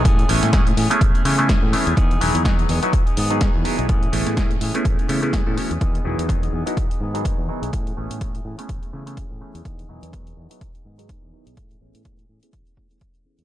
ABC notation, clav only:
X:1
M:4/4
L:1/16
Q:"Swing 16ths" 1/4=125
K:Alyd
V:1 name="Clav"
z2 [A,B,CEG]2 [A,B,CEG] z2 [A,B,CEG]3 [A,B,CEG] [A,B,CEG] z2 [A,B,CEG]2 | z2 [F,B,DEG]2 [F,B,D]3 [F,B,DEF]2 z2 [F,B,DG]3 [F,B,DEG]2 | z2 [A,B,CEG]2 [A,B,CEG] z2 [A,B,CEG]3 [A,B,CEA] [A,B,CEG]2 [A,B,CEA] [A,B,CEF] z | z2 [F,B,DEG]2 [F,B,DG]3 [F,B,DEF]2 z2 [F,B,DG]3 [F,B,DEG]2 |
z2 [A,B,CEG]2 [A,B,CE] z2 [A,B,CEG]3 [A,B,CEG] [A,B,CEG] z2 [A,B,CEG]2 | z2 [F,B,DEG]2 [F,B,]3 [F,B,DEF]2 z2 [F,B,DG]3 [F,B,DEG]2 | z2 [A,B,CEG]2 [A,B,G] z2 [A,B,CEG]3 [A,B,CEG] [A,B,CEG] z2 [A,B,CEG]2 |]